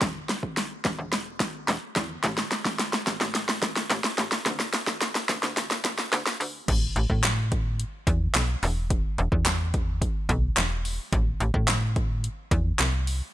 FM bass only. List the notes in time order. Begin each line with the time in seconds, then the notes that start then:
0.02 E1
0.85 E1
0.98 E1
1.68 E1
1.96 E2
2.24 A1
3.07 A1
3.21 A1
3.90 A1
4.18 A1
4.46 D2
5.29 D2
5.43 D2
6.13 D2
6.40 D2
6.68 A1
6.96 A1
7.10 A2
8.07 E2
8.35 B1
8.63 E1
9.18 E1
9.32 E2
10.29 B1
10.57 E1
11.12 A1
11.40 A1
11.54 A2
12.51 E2
12.79 C2